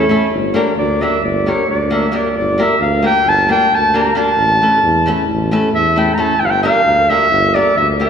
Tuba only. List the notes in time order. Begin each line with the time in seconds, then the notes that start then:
0.31 G1
0.77 D2
1.22 G1
1.68 D2
2.35 G1
2.79 D2
3.25 G1
3.71 D2
4.37 A1
4.83 E2
5.28 A1
5.73 E2
6.40 G1
6.85 D2
7.31 G1
7.76 D2